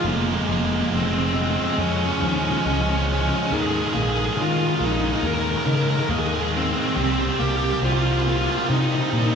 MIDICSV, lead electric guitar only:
0, 0, Header, 1, 2, 480
1, 0, Start_track
1, 0, Tempo, 863309
1, 26, Time_signature, 4, 2, 24, 8
1, 5199, End_track
2, 0, Start_track
2, 0, Title_t, "Lead electric guitar"
2, 0, Program_c, 0, 29
2, 42, Note_on_c, 0, 58, 87
2, 83, Note_off_c, 0, 58, 0
2, 86, Note_on_c, 0, 58, 67
2, 119, Note_off_c, 0, 58, 0
2, 121, Note_on_c, 0, 58, 75
2, 161, Note_off_c, 0, 58, 0
2, 163, Note_on_c, 0, 58, 67
2, 204, Note_off_c, 0, 58, 0
2, 206, Note_on_c, 0, 58, 76
2, 244, Note_off_c, 0, 58, 0
2, 247, Note_on_c, 0, 58, 69
2, 287, Note_off_c, 0, 58, 0
2, 289, Note_on_c, 0, 58, 81
2, 321, Note_off_c, 0, 58, 0
2, 323, Note_on_c, 0, 58, 71
2, 364, Note_off_c, 0, 58, 0
2, 370, Note_on_c, 0, 58, 76
2, 402, Note_off_c, 0, 58, 0
2, 404, Note_on_c, 0, 58, 64
2, 445, Note_off_c, 0, 58, 0
2, 448, Note_on_c, 0, 58, 72
2, 489, Note_off_c, 0, 58, 0
2, 524, Note_on_c, 0, 60, 92
2, 568, Note_off_c, 0, 60, 0
2, 571, Note_on_c, 0, 60, 73
2, 609, Note_off_c, 0, 60, 0
2, 612, Note_on_c, 0, 60, 87
2, 653, Note_off_c, 0, 60, 0
2, 656, Note_on_c, 0, 60, 68
2, 700, Note_off_c, 0, 60, 0
2, 702, Note_on_c, 0, 60, 85
2, 740, Note_off_c, 0, 60, 0
2, 742, Note_on_c, 0, 60, 77
2, 786, Note_off_c, 0, 60, 0
2, 792, Note_on_c, 0, 60, 83
2, 835, Note_off_c, 0, 60, 0
2, 837, Note_on_c, 0, 60, 68
2, 874, Note_off_c, 0, 60, 0
2, 876, Note_on_c, 0, 60, 79
2, 914, Note_off_c, 0, 60, 0
2, 917, Note_on_c, 0, 60, 64
2, 959, Note_off_c, 0, 60, 0
2, 961, Note_on_c, 0, 60, 73
2, 1005, Note_off_c, 0, 60, 0
2, 1009, Note_on_c, 0, 61, 100
2, 1052, Note_off_c, 0, 61, 0
2, 1055, Note_on_c, 0, 61, 72
2, 1095, Note_off_c, 0, 61, 0
2, 1097, Note_on_c, 0, 61, 77
2, 1140, Note_off_c, 0, 61, 0
2, 1143, Note_on_c, 0, 61, 71
2, 1178, Note_off_c, 0, 61, 0
2, 1180, Note_on_c, 0, 61, 81
2, 1221, Note_off_c, 0, 61, 0
2, 1223, Note_on_c, 0, 61, 75
2, 1266, Note_off_c, 0, 61, 0
2, 1268, Note_on_c, 0, 61, 87
2, 1311, Note_off_c, 0, 61, 0
2, 1315, Note_on_c, 0, 61, 74
2, 1353, Note_off_c, 0, 61, 0
2, 1355, Note_on_c, 0, 61, 90
2, 1390, Note_off_c, 0, 61, 0
2, 1393, Note_on_c, 0, 61, 75
2, 1431, Note_off_c, 0, 61, 0
2, 1433, Note_on_c, 0, 61, 90
2, 1474, Note_off_c, 0, 61, 0
2, 1477, Note_on_c, 0, 61, 77
2, 1519, Note_off_c, 0, 61, 0
2, 1521, Note_on_c, 0, 61, 79
2, 1562, Note_off_c, 0, 61, 0
2, 1564, Note_on_c, 0, 61, 67
2, 1607, Note_off_c, 0, 61, 0
2, 1613, Note_on_c, 0, 61, 73
2, 1650, Note_off_c, 0, 61, 0
2, 1652, Note_on_c, 0, 61, 66
2, 1695, Note_off_c, 0, 61, 0
2, 1740, Note_on_c, 0, 61, 94
2, 1780, Note_off_c, 0, 61, 0
2, 1782, Note_on_c, 0, 61, 76
2, 1828, Note_off_c, 0, 61, 0
2, 1831, Note_on_c, 0, 61, 85
2, 1870, Note_off_c, 0, 61, 0
2, 1872, Note_on_c, 0, 61, 69
2, 1918, Note_off_c, 0, 61, 0
2, 1926, Note_on_c, 0, 61, 82
2, 1970, Note_on_c, 0, 68, 120
2, 1972, Note_off_c, 0, 61, 0
2, 2009, Note_off_c, 0, 68, 0
2, 2011, Note_on_c, 0, 68, 77
2, 2054, Note_off_c, 0, 68, 0
2, 2057, Note_on_c, 0, 68, 94
2, 2093, Note_off_c, 0, 68, 0
2, 2096, Note_on_c, 0, 68, 88
2, 2139, Note_off_c, 0, 68, 0
2, 2150, Note_on_c, 0, 68, 101
2, 2184, Note_off_c, 0, 68, 0
2, 2186, Note_on_c, 0, 68, 91
2, 2230, Note_off_c, 0, 68, 0
2, 2239, Note_on_c, 0, 68, 100
2, 2275, Note_off_c, 0, 68, 0
2, 2277, Note_on_c, 0, 68, 87
2, 2321, Note_off_c, 0, 68, 0
2, 2323, Note_on_c, 0, 68, 93
2, 2367, Note_off_c, 0, 68, 0
2, 2369, Note_on_c, 0, 68, 87
2, 2407, Note_off_c, 0, 68, 0
2, 2409, Note_on_c, 0, 68, 95
2, 2451, Note_on_c, 0, 65, 94
2, 2453, Note_off_c, 0, 68, 0
2, 2497, Note_off_c, 0, 65, 0
2, 2499, Note_on_c, 0, 65, 79
2, 2546, Note_off_c, 0, 65, 0
2, 2550, Note_on_c, 0, 65, 89
2, 2591, Note_off_c, 0, 65, 0
2, 2593, Note_on_c, 0, 65, 72
2, 2639, Note_off_c, 0, 65, 0
2, 2641, Note_on_c, 0, 65, 76
2, 2688, Note_off_c, 0, 65, 0
2, 2699, Note_on_c, 0, 63, 106
2, 2736, Note_off_c, 0, 63, 0
2, 2738, Note_on_c, 0, 63, 87
2, 2780, Note_off_c, 0, 63, 0
2, 2786, Note_on_c, 0, 63, 103
2, 2822, Note_off_c, 0, 63, 0
2, 2825, Note_on_c, 0, 63, 92
2, 2864, Note_off_c, 0, 63, 0
2, 2866, Note_on_c, 0, 63, 90
2, 2908, Note_off_c, 0, 63, 0
2, 2929, Note_on_c, 0, 70, 127
2, 2969, Note_off_c, 0, 70, 0
2, 2971, Note_on_c, 0, 70, 100
2, 3016, Note_off_c, 0, 70, 0
2, 3026, Note_on_c, 0, 70, 113
2, 3059, Note_off_c, 0, 70, 0
2, 3061, Note_on_c, 0, 70, 102
2, 3102, Note_off_c, 0, 70, 0
2, 3104, Note_on_c, 0, 70, 117
2, 3144, Note_off_c, 0, 70, 0
2, 3146, Note_on_c, 0, 70, 106
2, 3191, Note_off_c, 0, 70, 0
2, 3199, Note_on_c, 0, 70, 113
2, 3241, Note_off_c, 0, 70, 0
2, 3243, Note_on_c, 0, 70, 99
2, 3281, Note_off_c, 0, 70, 0
2, 3283, Note_on_c, 0, 70, 106
2, 3327, Note_off_c, 0, 70, 0
2, 3332, Note_on_c, 0, 70, 89
2, 3377, Note_off_c, 0, 70, 0
2, 3395, Note_on_c, 0, 68, 113
2, 3439, Note_off_c, 0, 68, 0
2, 3441, Note_on_c, 0, 68, 87
2, 3481, Note_off_c, 0, 68, 0
2, 3483, Note_on_c, 0, 68, 109
2, 3522, Note_off_c, 0, 68, 0
2, 3525, Note_on_c, 0, 68, 93
2, 3566, Note_off_c, 0, 68, 0
2, 3568, Note_on_c, 0, 68, 95
2, 3612, Note_off_c, 0, 68, 0
2, 3650, Note_on_c, 0, 60, 104
2, 3690, Note_off_c, 0, 60, 0
2, 3692, Note_on_c, 0, 60, 77
2, 3736, Note_off_c, 0, 60, 0
2, 3739, Note_on_c, 0, 60, 99
2, 3783, Note_off_c, 0, 60, 0
2, 3786, Note_on_c, 0, 60, 91
2, 3824, Note_off_c, 0, 60, 0
2, 3826, Note_on_c, 0, 60, 95
2, 3865, Note_off_c, 0, 60, 0
2, 3867, Note_on_c, 0, 60, 82
2, 3912, Note_off_c, 0, 60, 0
2, 3916, Note_on_c, 0, 60, 100
2, 3956, Note_off_c, 0, 60, 0
2, 3958, Note_on_c, 0, 60, 86
2, 4003, Note_off_c, 0, 60, 0
2, 4012, Note_on_c, 0, 60, 92
2, 4051, Note_off_c, 0, 60, 0
2, 4054, Note_on_c, 0, 60, 77
2, 4098, Note_off_c, 0, 60, 0
2, 4112, Note_on_c, 0, 67, 120
2, 4156, Note_off_c, 0, 67, 0
2, 4160, Note_on_c, 0, 67, 94
2, 4203, Note_off_c, 0, 67, 0
2, 4205, Note_on_c, 0, 67, 101
2, 4246, Note_off_c, 0, 67, 0
2, 4248, Note_on_c, 0, 67, 87
2, 4281, Note_off_c, 0, 67, 0
2, 4283, Note_on_c, 0, 67, 91
2, 4327, Note_off_c, 0, 67, 0
2, 4364, Note_on_c, 0, 65, 85
2, 4405, Note_off_c, 0, 65, 0
2, 4408, Note_on_c, 0, 65, 60
2, 4437, Note_off_c, 0, 65, 0
2, 4439, Note_on_c, 0, 65, 73
2, 4480, Note_off_c, 0, 65, 0
2, 4487, Note_on_c, 0, 65, 66
2, 4518, Note_off_c, 0, 65, 0
2, 4520, Note_on_c, 0, 65, 83
2, 4561, Note_off_c, 0, 65, 0
2, 4573, Note_on_c, 0, 65, 74
2, 4607, Note_off_c, 0, 65, 0
2, 4610, Note_on_c, 0, 65, 79
2, 4648, Note_off_c, 0, 65, 0
2, 4650, Note_on_c, 0, 65, 70
2, 4691, Note_off_c, 0, 65, 0
2, 4695, Note_on_c, 0, 65, 72
2, 4727, Note_off_c, 0, 65, 0
2, 4729, Note_on_c, 0, 65, 63
2, 4767, Note_off_c, 0, 65, 0
2, 4769, Note_on_c, 0, 65, 71
2, 4810, Note_off_c, 0, 65, 0
2, 4841, Note_on_c, 0, 63, 90
2, 4875, Note_off_c, 0, 63, 0
2, 4878, Note_on_c, 0, 63, 59
2, 4921, Note_off_c, 0, 63, 0
2, 4923, Note_on_c, 0, 63, 72
2, 4967, Note_off_c, 0, 63, 0
2, 4976, Note_on_c, 0, 63, 67
2, 5010, Note_off_c, 0, 63, 0
2, 5012, Note_on_c, 0, 63, 78
2, 5055, Note_off_c, 0, 63, 0
2, 5062, Note_on_c, 0, 63, 68
2, 5102, Note_off_c, 0, 63, 0
2, 5104, Note_on_c, 0, 63, 77
2, 5146, Note_off_c, 0, 63, 0
2, 5148, Note_on_c, 0, 63, 65
2, 5183, Note_off_c, 0, 63, 0
2, 5199, End_track
0, 0, End_of_file